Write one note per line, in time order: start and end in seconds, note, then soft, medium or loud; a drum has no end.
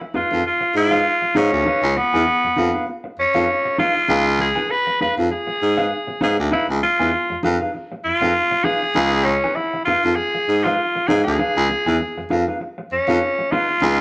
0.01 muted clean electric guitar stroke medium
0.14 0.22 F2 soft
0.14 0.26 D#4 medium
0.14 0.43 F4 medium
0.14 0.27 G#4 medium
0.14 0.27 B4 medium
0.14 0.27 F5 medium
0.31 0.43 F2 medium
0.31 0.41 D#4 soft
0.31 0.41 G#4 soft
0.31 0.41 B4 medium
0.31 0.41 F5 medium
0.44 0.74 F4 medium
0.44 muted clean electric guitar stroke soft
0.61 muted clean electric guitar stroke soft
0.75 1.00 G#2 medium
0.75 1.38 F4 loud
0.91 1.05 D#4 medium
0.91 1.04 G#4 medium
0.91 1.04 B4 medium
0.91 1.04 F5 medium
1.22 muted clean electric guitar stroke soft
1.35 1.50 G#2 medium
1.35 1.98 C#4 loud
1.35 1.51 D#4 loud
1.35 1.51 G#4 loud
1.35 1.51 B4 medium
1.35 1.51 F5 loud
1.53 1.64 D2 medium
1.53 muted clean electric guitar stroke soft
1.66 1.81 D#4 medium
1.66 1.82 G#4 loud
1.66 1.82 B4 loud
1.66 1.82 F5 loud
1.83 1.94 C#2 medium
1.83 muted clean electric guitar stroke soft
1.97 2.92 B3 loud
1.97 muted clean electric guitar stroke soft
2.14 2.25 E2 medium
2.14 2.24 D#4 soft
2.14 2.24 G#4 medium
2.14 2.23 B4 medium
2.14 2.23 G#5 medium
2.26 muted clean electric guitar stroke medium
2.44 2.50 F2 soft
2.44 muted clean electric guitar stroke soft
2.56 2.71 F2 medium
2.56 2.69 D#4 medium
2.56 2.69 G#4 medium
2.56 2.70 B4 medium
2.56 2.70 F5 medium
2.74 2.84 D#4 soft
2.74 2.84 G#4 medium
2.74 2.84 B4 medium
2.74 2.84 F5 medium
2.87 muted clean electric guitar stroke soft
3.04 muted clean electric guitar stroke soft
3.18 3.25 F2 medium
3.18 3.75 C#4 loud
3.35 3.46 F2 medium
3.35 3.48 D#4 medium
3.35 3.47 G#4 medium
3.35 3.47 B4 medium
3.35 3.47 F5 medium
3.65 muted clean electric guitar stroke soft
3.78 3.94 D#4 loud
3.78 4.36 F4 loud
3.78 3.94 G#4 medium
3.78 3.95 B4 medium
3.78 3.94 F5 loud
3.95 muted clean electric guitar stroke medium
4.08 4.49 C#2 loud
4.08 4.24 D#4 medium
4.08 4.24 G#4 medium
4.08 4.24 B4 medium
4.08 4.24 F5 medium
4.25 muted clean electric guitar stroke soft
4.39 4.72 G#4 loud
4.39 muted clean electric guitar stroke soft
4.56 4.66 D#4 soft
4.56 4.66 G#4 medium
4.56 4.66 B4 medium
4.56 4.66 G#5 medium
4.69 5.01 B4 loud
4.69 muted clean electric guitar stroke soft
4.87 muted clean electric guitar stroke soft
5.01 5.08 F2 soft
5.01 5.13 D#4 medium
5.01 5.13 G#4 medium
5.01 5.15 B4 medium
5.01 5.13 B4 medium
5.01 5.13 F5 medium
5.17 5.29 F2 medium
5.17 5.27 D#4 soft
5.17 5.27 G#4 medium
5.17 5.27 B4 medium
5.17 5.27 F5 medium
5.30 6.18 G#4 loud
5.30 muted clean electric guitar stroke medium
5.47 muted clean electric guitar stroke soft
5.62 5.87 G#2 medium
5.77 5.91 D#4 medium
5.77 5.91 G#4 medium
5.77 5.90 B4 medium
5.77 5.90 F5 medium
6.07 muted clean electric guitar stroke medium
6.21 6.37 G#2 medium
6.21 6.37 D#4 medium
6.21 6.37 G#4 medium
6.21 6.37 G#4 loud
6.21 6.37 B4 medium
6.21 6.37 F5 loud
6.39 6.50 D2 medium
6.39 muted clean electric guitar stroke soft
6.51 6.67 D#4 loud
6.51 6.66 E4 medium
6.51 6.67 G#4 loud
6.51 6.68 B4 loud
6.51 6.68 F5 loud
6.69 6.81 C#2 medium
6.69 muted clean electric guitar stroke soft
6.83 7.40 F4 loud
6.83 muted clean electric guitar stroke soft
7.00 7.11 E2 medium
7.00 7.10 D#4 soft
7.00 7.10 G#4 soft
7.00 7.09 B4 medium
7.00 7.09 G#5 medium
7.13 muted clean electric guitar stroke soft
7.30 7.36 F2 soft
7.30 muted clean electric guitar stroke soft
7.43 7.58 F2 loud
7.43 7.55 D#4 medium
7.43 7.56 G#4 medium
7.43 7.56 B4 medium
7.43 7.56 F5 medium
7.60 7.71 D#4 soft
7.60 7.70 G#4 medium
7.60 7.70 B4 medium
7.60 7.70 F5 medium
7.74 muted clean electric guitar stroke soft
7.92 muted clean electric guitar stroke soft
8.04 8.12 F2 soft
8.04 8.66 F4 loud
8.21 8.33 F2 medium
8.21 8.34 D#4 medium
8.21 8.34 G#4 medium
8.21 8.34 B4 medium
8.21 8.34 F5 medium
8.51 muted clean electric guitar stroke medium
8.64 8.80 D#4 medium
8.64 9.26 G#4 loud
8.64 8.80 G#4 medium
8.64 8.81 B4 loud
8.64 8.81 F5 loud
8.82 muted clean electric guitar stroke soft
8.95 9.35 C#2 loud
8.95 9.11 D#4 medium
8.95 9.11 G#4 medium
8.95 9.11 B4 medium
8.95 9.11 F5 loud
9.13 muted clean electric guitar stroke soft
9.24 9.56 C#4 loud
9.24 muted clean electric guitar stroke soft
9.44 9.53 D#4 soft
9.44 9.53 G#4 soft
9.44 9.53 B4 medium
9.44 9.53 G#5 medium
9.55 9.84 E4 medium
9.55 muted clean electric guitar stroke soft
9.74 muted clean electric guitar stroke soft
9.85 9.94 F2 soft
9.85 9.99 D#4 medium
9.85 10.16 F4 loud
9.85 9.99 G#4 medium
9.85 9.99 B4 medium
9.85 10.00 F5 medium
10.04 10.15 F2 medium
10.04 10.14 D#4 soft
10.04 10.14 G#4 medium
10.04 10.14 B4 medium
10.04 10.13 F5 medium
10.15 10.65 G#4 loud
10.15 muted clean electric guitar stroke soft
10.35 muted clean electric guitar stroke soft
10.48 10.73 G#2 medium
10.63 10.78 D#4 medium
10.63 11.09 F4 medium
10.63 10.77 G#4 medium
10.63 10.77 B4 medium
10.63 10.77 F5 medium
10.95 muted clean electric guitar stroke soft
11.07 11.23 G#2 medium
11.07 11.24 D#4 medium
11.07 11.23 G#4 loud
11.07 11.24 G#4 medium
11.07 11.24 B4 medium
11.07 11.25 F5 medium
11.24 11.37 D2 medium
11.24 12.42 G#4 loud
11.24 muted clean electric guitar stroke soft
11.39 11.54 D#4 medium
11.39 11.54 G#4 medium
11.39 11.55 B4 medium
11.39 11.55 F5 medium
11.56 11.68 C#2 loud
11.56 muted clean electric guitar stroke soft
11.70 muted clean electric guitar stroke soft
11.86 11.98 E2 medium
11.86 11.97 D#4 medium
11.86 11.96 G#4 medium
11.86 11.96 B4 medium
11.86 11.96 G#5 medium
12.00 muted clean electric guitar stroke medium
12.17 12.23 F2 soft
12.17 muted clean electric guitar stroke soft
12.30 12.44 F2 loud
12.30 12.42 D#4 medium
12.30 12.42 G#4 medium
12.30 12.43 B4 medium
12.30 12.43 F5 medium
12.48 12.57 D#4 soft
12.48 12.57 G#4 medium
12.48 12.57 B4 medium
12.48 12.57 F5 medium
12.60 muted clean electric guitar stroke medium
12.78 muted clean electric guitar stroke soft
12.92 12.98 F2 soft
12.92 13.53 C#4 medium
13.08 13.19 F2 loud
13.08 13.21 D#4 medium
13.08 13.20 G#4 medium
13.08 13.20 B4 medium
13.08 13.20 F5 medium
13.39 muted clean electric guitar stroke medium
13.51 13.67 D#4 loud
13.51 14.01 F4 loud
13.51 13.68 G#4 medium
13.51 13.68 B4 loud
13.51 13.68 F5 loud
13.69 muted clean electric guitar stroke soft
13.82 14.01 C#2 loud
13.82 13.97 D#4 medium
13.82 13.98 G#4 medium
13.82 13.98 B4 medium
13.82 13.98 F5 medium